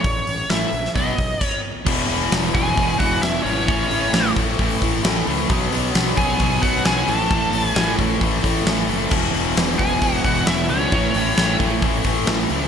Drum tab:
CC |------------x---|x---------------|----------------|----------------|
HH |o-o-o-o-o-o-----|--o-o-o-o-o-o-o-|o-o-o-o-o-o-o-o-|o-o-o-o-o-o-o-o-|
SD |----o--o--------|----o-------o---|----o-------o---|----o-------o---|
BD |o-------o-o-o---|o-----o-o-o-----|o-----o-o-o-----|o-----o-o-o-----|

CC |----------------|x---------------|----------------|
HH |o-o-o-o-o-o-o-o-|--o-o-o-o-o-o-o-|o-o-o-o-o-o-o-o-|
SD |----o-------o---|----o-------o---|----o-------o---|
BD |o-----o-o-o-----|o-----o-o-o-----|o-----o-o-o-----|